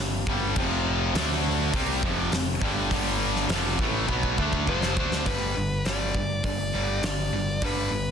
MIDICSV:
0, 0, Header, 1, 6, 480
1, 0, Start_track
1, 0, Tempo, 588235
1, 458, Time_signature, 4, 2, 24, 8
1, 6619, End_track
2, 0, Start_track
2, 0, Title_t, "Lead electric guitar"
2, 0, Program_c, 0, 29
2, 3828, Note_on_c, 0, 72, 74
2, 4295, Note_off_c, 0, 72, 0
2, 4299, Note_on_c, 0, 71, 69
2, 4780, Note_off_c, 0, 71, 0
2, 4783, Note_on_c, 0, 74, 75
2, 5255, Note_off_c, 0, 74, 0
2, 5264, Note_on_c, 0, 74, 73
2, 5745, Note_off_c, 0, 74, 0
2, 5755, Note_on_c, 0, 74, 71
2, 6242, Note_off_c, 0, 74, 0
2, 6245, Note_on_c, 0, 71, 77
2, 6619, Note_off_c, 0, 71, 0
2, 6619, End_track
3, 0, Start_track
3, 0, Title_t, "Distorted electric guitar"
3, 0, Program_c, 1, 30
3, 0, Note_on_c, 1, 43, 68
3, 0, Note_on_c, 1, 50, 73
3, 170, Note_off_c, 1, 43, 0
3, 170, Note_off_c, 1, 50, 0
3, 230, Note_on_c, 1, 43, 87
3, 232, Note_on_c, 1, 50, 94
3, 240, Note_on_c, 1, 55, 93
3, 457, Note_off_c, 1, 43, 0
3, 458, Note_off_c, 1, 50, 0
3, 462, Note_off_c, 1, 55, 0
3, 466, Note_on_c, 1, 41, 89
3, 472, Note_on_c, 1, 48, 100
3, 473, Note_on_c, 1, 53, 104
3, 927, Note_off_c, 1, 48, 0
3, 930, Note_on_c, 1, 50, 87
3, 932, Note_off_c, 1, 53, 0
3, 935, Note_off_c, 1, 41, 0
3, 935, Note_on_c, 1, 57, 102
3, 945, Note_on_c, 1, 62, 104
3, 1407, Note_off_c, 1, 50, 0
3, 1410, Note_off_c, 1, 57, 0
3, 1415, Note_off_c, 1, 62, 0
3, 1424, Note_on_c, 1, 48, 90
3, 1430, Note_on_c, 1, 55, 95
3, 1436, Note_on_c, 1, 60, 95
3, 1654, Note_off_c, 1, 48, 0
3, 1657, Note_off_c, 1, 55, 0
3, 1659, Note_on_c, 1, 41, 96
3, 1660, Note_off_c, 1, 60, 0
3, 1662, Note_on_c, 1, 48, 91
3, 1672, Note_on_c, 1, 53, 103
3, 1891, Note_off_c, 1, 41, 0
3, 1893, Note_off_c, 1, 48, 0
3, 1898, Note_off_c, 1, 53, 0
3, 1904, Note_on_c, 1, 41, 67
3, 1909, Note_on_c, 1, 48, 62
3, 2093, Note_off_c, 1, 41, 0
3, 2096, Note_off_c, 1, 48, 0
3, 2138, Note_on_c, 1, 43, 83
3, 2145, Note_on_c, 1, 50, 96
3, 2153, Note_on_c, 1, 55, 98
3, 2371, Note_off_c, 1, 43, 0
3, 2374, Note_off_c, 1, 50, 0
3, 2379, Note_off_c, 1, 55, 0
3, 2380, Note_on_c, 1, 43, 95
3, 2390, Note_on_c, 1, 50, 106
3, 2392, Note_on_c, 1, 55, 115
3, 2846, Note_off_c, 1, 43, 0
3, 2849, Note_on_c, 1, 41, 94
3, 2853, Note_off_c, 1, 50, 0
3, 2856, Note_on_c, 1, 48, 98
3, 2858, Note_off_c, 1, 55, 0
3, 2863, Note_on_c, 1, 53, 96
3, 3087, Note_off_c, 1, 41, 0
3, 3090, Note_off_c, 1, 48, 0
3, 3092, Note_off_c, 1, 53, 0
3, 3094, Note_on_c, 1, 45, 84
3, 3095, Note_on_c, 1, 52, 96
3, 3102, Note_on_c, 1, 57, 97
3, 3315, Note_off_c, 1, 45, 0
3, 3318, Note_on_c, 1, 47, 93
3, 3321, Note_off_c, 1, 52, 0
3, 3324, Note_on_c, 1, 54, 91
3, 3327, Note_off_c, 1, 57, 0
3, 3330, Note_on_c, 1, 59, 102
3, 3561, Note_off_c, 1, 47, 0
3, 3564, Note_off_c, 1, 54, 0
3, 3567, Note_off_c, 1, 59, 0
3, 3567, Note_on_c, 1, 50, 86
3, 3575, Note_on_c, 1, 57, 98
3, 3583, Note_on_c, 1, 62, 92
3, 3794, Note_on_c, 1, 41, 90
3, 3804, Note_off_c, 1, 50, 0
3, 3807, Note_on_c, 1, 48, 91
3, 3809, Note_off_c, 1, 57, 0
3, 3813, Note_on_c, 1, 53, 104
3, 3814, Note_off_c, 1, 62, 0
3, 4038, Note_off_c, 1, 48, 0
3, 4039, Note_off_c, 1, 41, 0
3, 4041, Note_on_c, 1, 50, 89
3, 4042, Note_off_c, 1, 53, 0
3, 4046, Note_on_c, 1, 57, 89
3, 4056, Note_on_c, 1, 62, 102
3, 4278, Note_off_c, 1, 50, 0
3, 4284, Note_on_c, 1, 43, 84
3, 4285, Note_off_c, 1, 57, 0
3, 4287, Note_on_c, 1, 50, 88
3, 4291, Note_off_c, 1, 62, 0
3, 4292, Note_on_c, 1, 55, 91
3, 4517, Note_off_c, 1, 43, 0
3, 4519, Note_off_c, 1, 50, 0
3, 4521, Note_off_c, 1, 55, 0
3, 4539, Note_on_c, 1, 43, 64
3, 4539, Note_on_c, 1, 50, 82
3, 4755, Note_off_c, 1, 43, 0
3, 4755, Note_off_c, 1, 50, 0
3, 4784, Note_on_c, 1, 43, 75
3, 4791, Note_on_c, 1, 50, 83
3, 4791, Note_on_c, 1, 55, 90
3, 5007, Note_off_c, 1, 43, 0
3, 5011, Note_off_c, 1, 50, 0
3, 5011, Note_off_c, 1, 55, 0
3, 5023, Note_on_c, 1, 43, 58
3, 5029, Note_on_c, 1, 50, 67
3, 5237, Note_off_c, 1, 43, 0
3, 5240, Note_off_c, 1, 50, 0
3, 5264, Note_on_c, 1, 43, 66
3, 5269, Note_on_c, 1, 50, 80
3, 5478, Note_off_c, 1, 43, 0
3, 5481, Note_off_c, 1, 50, 0
3, 5506, Note_on_c, 1, 43, 84
3, 5511, Note_on_c, 1, 50, 96
3, 5518, Note_on_c, 1, 55, 85
3, 5729, Note_off_c, 1, 43, 0
3, 5731, Note_off_c, 1, 50, 0
3, 5735, Note_off_c, 1, 55, 0
3, 5737, Note_on_c, 1, 43, 68
3, 5745, Note_on_c, 1, 50, 72
3, 5955, Note_off_c, 1, 43, 0
3, 5959, Note_off_c, 1, 50, 0
3, 5979, Note_on_c, 1, 43, 68
3, 5987, Note_on_c, 1, 50, 77
3, 6196, Note_off_c, 1, 43, 0
3, 6200, Note_off_c, 1, 50, 0
3, 6220, Note_on_c, 1, 43, 89
3, 6230, Note_on_c, 1, 50, 89
3, 6235, Note_on_c, 1, 55, 98
3, 6446, Note_off_c, 1, 43, 0
3, 6451, Note_off_c, 1, 50, 0
3, 6454, Note_off_c, 1, 55, 0
3, 6470, Note_on_c, 1, 43, 65
3, 6482, Note_on_c, 1, 50, 79
3, 6619, Note_off_c, 1, 43, 0
3, 6619, Note_off_c, 1, 50, 0
3, 6619, End_track
4, 0, Start_track
4, 0, Title_t, "Distorted electric guitar"
4, 0, Program_c, 2, 30
4, 3352, Note_on_c, 2, 47, 84
4, 3357, Note_on_c, 2, 54, 92
4, 3366, Note_on_c, 2, 59, 97
4, 3578, Note_off_c, 2, 47, 0
4, 3581, Note_off_c, 2, 54, 0
4, 3585, Note_off_c, 2, 59, 0
4, 3601, Note_on_c, 2, 50, 86
4, 3823, Note_off_c, 2, 50, 0
4, 3837, Note_on_c, 2, 41, 89
4, 4061, Note_off_c, 2, 41, 0
4, 6619, End_track
5, 0, Start_track
5, 0, Title_t, "Picked electric bass"
5, 0, Program_c, 3, 34
5, 0, Note_on_c, 3, 31, 69
5, 193, Note_off_c, 3, 31, 0
5, 220, Note_on_c, 3, 31, 102
5, 442, Note_off_c, 3, 31, 0
5, 458, Note_on_c, 3, 29, 93
5, 906, Note_off_c, 3, 29, 0
5, 929, Note_on_c, 3, 38, 91
5, 1381, Note_off_c, 3, 38, 0
5, 1415, Note_on_c, 3, 36, 97
5, 1640, Note_off_c, 3, 36, 0
5, 1655, Note_on_c, 3, 29, 101
5, 1880, Note_off_c, 3, 29, 0
5, 1889, Note_on_c, 3, 29, 70
5, 2117, Note_off_c, 3, 29, 0
5, 2131, Note_on_c, 3, 31, 99
5, 2358, Note_off_c, 3, 31, 0
5, 2377, Note_on_c, 3, 31, 94
5, 2825, Note_off_c, 3, 31, 0
5, 2844, Note_on_c, 3, 29, 89
5, 3074, Note_off_c, 3, 29, 0
5, 3089, Note_on_c, 3, 33, 83
5, 3317, Note_off_c, 3, 33, 0
5, 3334, Note_on_c, 3, 35, 94
5, 3559, Note_off_c, 3, 35, 0
5, 3578, Note_on_c, 3, 38, 91
5, 3802, Note_off_c, 3, 38, 0
5, 3817, Note_on_c, 3, 29, 87
5, 4041, Note_off_c, 3, 29, 0
5, 4052, Note_on_c, 3, 38, 94
5, 4279, Note_off_c, 3, 38, 0
5, 4294, Note_on_c, 3, 31, 83
5, 4512, Note_off_c, 3, 31, 0
5, 4539, Note_on_c, 3, 31, 75
5, 4755, Note_off_c, 3, 31, 0
5, 4774, Note_on_c, 3, 31, 79
5, 4993, Note_off_c, 3, 31, 0
5, 5015, Note_on_c, 3, 31, 77
5, 5233, Note_off_c, 3, 31, 0
5, 5252, Note_on_c, 3, 31, 83
5, 5472, Note_off_c, 3, 31, 0
5, 5498, Note_on_c, 3, 31, 80
5, 5715, Note_off_c, 3, 31, 0
5, 5733, Note_on_c, 3, 31, 73
5, 5952, Note_off_c, 3, 31, 0
5, 5976, Note_on_c, 3, 31, 90
5, 6194, Note_off_c, 3, 31, 0
5, 6218, Note_on_c, 3, 31, 81
5, 6436, Note_off_c, 3, 31, 0
5, 6455, Note_on_c, 3, 31, 83
5, 6619, Note_off_c, 3, 31, 0
5, 6619, End_track
6, 0, Start_track
6, 0, Title_t, "Drums"
6, 219, Note_on_c, 9, 36, 101
6, 301, Note_off_c, 9, 36, 0
6, 455, Note_on_c, 9, 49, 88
6, 459, Note_on_c, 9, 36, 96
6, 537, Note_off_c, 9, 49, 0
6, 541, Note_off_c, 9, 36, 0
6, 940, Note_on_c, 9, 46, 57
6, 948, Note_on_c, 9, 38, 112
6, 1022, Note_off_c, 9, 46, 0
6, 1029, Note_off_c, 9, 38, 0
6, 1416, Note_on_c, 9, 36, 95
6, 1417, Note_on_c, 9, 46, 59
6, 1498, Note_off_c, 9, 36, 0
6, 1498, Note_off_c, 9, 46, 0
6, 1655, Note_on_c, 9, 36, 108
6, 1737, Note_off_c, 9, 36, 0
6, 1894, Note_on_c, 9, 46, 64
6, 1901, Note_on_c, 9, 38, 110
6, 1976, Note_off_c, 9, 46, 0
6, 1983, Note_off_c, 9, 38, 0
6, 2134, Note_on_c, 9, 36, 102
6, 2215, Note_off_c, 9, 36, 0
6, 2375, Note_on_c, 9, 36, 91
6, 2378, Note_on_c, 9, 46, 57
6, 2456, Note_off_c, 9, 36, 0
6, 2460, Note_off_c, 9, 46, 0
6, 2741, Note_on_c, 9, 38, 33
6, 2823, Note_off_c, 9, 38, 0
6, 2850, Note_on_c, 9, 46, 55
6, 2858, Note_on_c, 9, 38, 109
6, 2932, Note_off_c, 9, 46, 0
6, 2939, Note_off_c, 9, 38, 0
6, 3093, Note_on_c, 9, 36, 109
6, 3174, Note_off_c, 9, 36, 0
6, 3334, Note_on_c, 9, 36, 62
6, 3415, Note_off_c, 9, 36, 0
6, 3453, Note_on_c, 9, 36, 60
6, 3535, Note_off_c, 9, 36, 0
6, 3575, Note_on_c, 9, 36, 78
6, 3657, Note_off_c, 9, 36, 0
6, 3694, Note_on_c, 9, 36, 67
6, 3776, Note_off_c, 9, 36, 0
6, 3814, Note_on_c, 9, 36, 82
6, 3896, Note_off_c, 9, 36, 0
6, 3936, Note_on_c, 9, 38, 73
6, 4018, Note_off_c, 9, 38, 0
6, 4054, Note_on_c, 9, 36, 96
6, 4136, Note_off_c, 9, 36, 0
6, 4180, Note_on_c, 9, 38, 88
6, 4261, Note_off_c, 9, 38, 0
6, 4289, Note_on_c, 9, 46, 48
6, 4294, Note_on_c, 9, 36, 99
6, 4370, Note_off_c, 9, 46, 0
6, 4376, Note_off_c, 9, 36, 0
6, 4777, Note_on_c, 9, 46, 50
6, 4784, Note_on_c, 9, 38, 95
6, 4859, Note_off_c, 9, 46, 0
6, 4866, Note_off_c, 9, 38, 0
6, 5015, Note_on_c, 9, 36, 76
6, 5096, Note_off_c, 9, 36, 0
6, 5253, Note_on_c, 9, 46, 50
6, 5254, Note_on_c, 9, 36, 100
6, 5334, Note_off_c, 9, 46, 0
6, 5336, Note_off_c, 9, 36, 0
6, 5737, Note_on_c, 9, 46, 52
6, 5744, Note_on_c, 9, 38, 103
6, 5818, Note_off_c, 9, 46, 0
6, 5826, Note_off_c, 9, 38, 0
6, 6216, Note_on_c, 9, 46, 53
6, 6217, Note_on_c, 9, 36, 99
6, 6298, Note_off_c, 9, 46, 0
6, 6299, Note_off_c, 9, 36, 0
6, 6619, End_track
0, 0, End_of_file